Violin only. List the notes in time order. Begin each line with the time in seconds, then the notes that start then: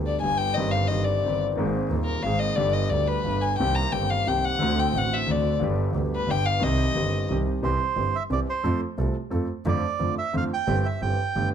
0.07 D5
0.22 G#5
0.38 G5
0.54 D#5
0.71 F5
0.88 D#5
1.05 D5
2.05 A#4
2.23 F5
2.39 D#5
2.56 D5
2.73 D#5
2.90 D5
3.08 B4
3.42 G#5
3.59 G5
3.75 A#5
3.93 G5
4.10 F5
4.28 G5
4.45 F#5
4.79 G5
4.98 F#5
5.14 E5
5.31 D5
6.15 B4
6.31 G5
6.46 F5
6.63 D#5